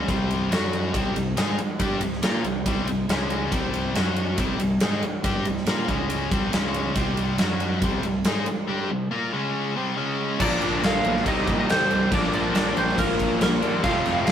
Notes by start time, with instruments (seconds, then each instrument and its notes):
0.08 fingered electric bass C2, distorted electric guitar C3 G3 C4, kick, ride
0.31 ride
0.51 fingered electric bass F#2, distorted electric guitar F#3 C#4 F#4, snare, ride
0.73 ride
0.94 fingered electric bass C2, distorted electric guitar C3 G3 C4, kick, ride
1.15 fingered electric bass C2, distorted electric guitar C3 G3, ride
1.37 fingered electric bass G#2, distorted electric guitar G#3 D#4 G#4, snare, ride
1.58 muted distorted electric guitar stroke, muted fingered electric bass stroke, ride
1.80 fingered electric bass G2, distorted electric guitar G3 D4 G4, kick, ride
2.00 fingered electric bass C2, distorted electric guitar C3 G3, ride
2.13 snare
2.22 fingered electric bass A#2, distorted electric guitar A#3 F4 A#4, snare, ride
2.44 fingered electric bass C2, distorted electric guitar C3 G3, ride
2.66 fingered electric bass C2, distorted electric guitar C3 G3 C4, kick, ride
2.86 fingered electric bass C2, distorted electric guitar C3 G3, ride
3.08 fingered electric bass C#2, distorted electric guitar C#3 G#3 C#4, snare, ride
3.30 ride
3.52 fingered electric bass C2, distorted electric guitar C3 G3 C4, kick, ride
3.74 ride
3.95 fingered electric bass F#2, distorted electric guitar F#3 C#4 F#4, snare, ride
4.16 ride
4.38 fingered electric bass C2, distorted electric guitar C3 G3 C4, kick, ride
4.60 fingered electric bass C2, distorted electric guitar C3 G3, ride
4.80 fingered electric bass G#2, distorted electric guitar G#3 D#4 G#4, snare, ride
5.03 muted fingered electric bass stroke, muted distorted electric guitar stroke, ride
5.24 fingered electric bass G2, distorted electric guitar G3 D4 G4, kick, ride
5.45 fingered electric bass C2, distorted electric guitar C3 G3, ride
5.57 snare
5.67 fingered electric bass A#2, distorted electric guitar A#3 F4 A#4, snare, ride
5.88 fingered electric bass C#2, distorted electric guitar C#3 G#3 C#4, kick, ride
6.10 ride
6.31 fingered electric bass C2, distorted electric guitar C3 G3 C4, kick, ride
6.53 fingered electric bass C#2, distorted electric guitar C#3 G#3 C#4, snare, ride
6.74 ride
6.95 fingered electric bass C2, distorted electric guitar C3 G3 C4, kick, ride
7.17 ride
7.38 fingered electric bass F#2, distorted electric guitar F#3 C#4 F#4, snare, ride
7.60 ride
7.82 fingered electric bass C2, distorted electric guitar C3 G3 C4, kick, ride
8.03 fingered electric bass C2, distorted electric guitar C3 G3, ride
8.24 fingered electric bass G#2, distorted electric guitar G#3 D#4 G#4, snare, ride
8.46 muted fingered electric bass stroke, muted distorted electric guitar stroke, ride
8.68 distorted electric guitar G3 D4 G4
8.90 distorted electric guitar C3 G3
9.11 distorted electric guitar A#3 F4 A#4
9.33 distorted electric guitar C#3 G#3 C#4
9.76 distorted electric guitar C3 G3 C4
9.97 distorted electric guitar C#3 G#3 C#4
10.40 fingered electric bass A#1, distorted electric guitar A#2 F3 A#3, overdriven electric guitar D3 D4, tonewheel organ A#3 F4 C5, lead electric guitar D4 D5, kick, crash
10.62 fingered electric bass A#1, crash
10.83 fingered electric bass A#1, lead electric guitar F4 F5, snare, crash
11.04 fingered electric bass B1, distorted electric guitar A#2 F3 A#3, crash
11.16 snare
11.26 fingered electric bass C2, distorted electric guitar C3 G3 C4, tonewheel organ C4 G4 D#5, lead electric guitar D#4 D#5, overdriven electric guitar D#4, kick, crash
11.47 fingered electric bass A#2, kick, crash
11.59 lead electric guitar D#4 D#5
11.69 fingered electric bass D#2, lead electric guitar C4 C5, snare, crash
11.90 fingered electric bass C2, distorted electric guitar C3 G3 C4, crash
12.11 fingered electric bass A#1, distorted electric guitar A#2 F3 A#3, tonewheel organ A#3 F4 C5, lead electric guitar D4 D5, overdriven electric guitar D4, kick, crash
12.33 fingered electric bass A#1, lead electric guitar D4 D5, crash
12.55 fingered electric bass A#1, snare, crash
12.76 fingered electric bass A#1, distorted electric guitar A#2 F3 A#3, lead electric guitar C4 C5, crash
12.89 snare
12.98 fingered electric bass A#1, lead electric guitar A#3 A#4, kick, crash
13.19 fingered electric bass A#1, kick, crash
13.41 fingered electric bass A#1, lead electric guitar A#3 A#4, snare, crash
13.61 fingered electric bass D#2, overdriven electric guitar A#2 F3 A#3 D4, crash
13.84 fingered electric bass F1, distorted electric guitar F2 C3 F3, overdriven electric guitar A3 C4, lead electric guitar F4 F5, tonewheel organ G5, kick, crash
14.05 fingered electric bass F1, snare, crash
14.26 fingered electric bass F1, lead electric guitar F4 F5, snare, crash